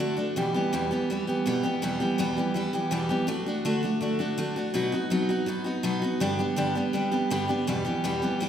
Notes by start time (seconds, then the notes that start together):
0.00 D3 A3 D4 F#4
0.17 A3 D4 F#4
0.36 E2 B2 E3 G3 B3 G4
0.54 E3 G3 B3 G4
0.73 E2 B2 E3 G3 B3 G4
0.91 E3 G3 B3 G4
1.10 E3 G3 B3 G4
1.27 E3 G3 B3 G4
1.46 E2 B2 E3 G3 B3 G4
1.63 E3 G3 B3 G4
1.82 E2 B2 E3 G3 B3 G4
2.00 E3 G3 B3 G4
2.18 E2 B2 E3 G3 B3 G4
2.37 E3 G3 B3 G4
2.54 E3 G3 B3 G4
2.73 E3 G3 B3 G4
2.91 E2 B2 E3 G3 B3 G4
3.09 E3 G3 B3 G4
3.27 D3 A3 D4 F#4
3.46 A3 D4 F#4
3.65 D3 A3 D4 F#4
3.83 A3 D4 F#4
4.01 D3 A3 D4 F#4
4.19 A3 D4 F#4
4.38 D3 A3 D4 F#4
4.56 A3 D4 F#4
4.74 B2 F#3 B3 D#4 F#4
4.92 B3 D#4 F#4
5.10 B2 F#3 B3 D#4 F#4
5.29 B3 D#4 F#4
5.46 F#3 B3 D#4 F#4
5.64 B3 D#4 F#4
5.83 B2 F#3 B3 D#4 F#4
6.02 B3 D#4 F#4
6.20 G2 D3 G3 B3 D4 G4
6.39 G3 B3 D4 G4
6.56 G2 D3 G3 B3 D4 G4
6.75 G3 B3 D4 G4
6.93 G3 B3 D4 G4
7.12 G3 B3 D4 G4
7.30 G2 D3 G3 B3 D4 G4
7.48 G3 B3 D4 G4
7.67 E2 B2 E3 G3 B3 G4
7.85 E3 G3 B3 G4
8.04 E2 B2 E3 G3 B3 G4
8.22 E3 G3 B3 G4
8.40 E3 G3 B3 G4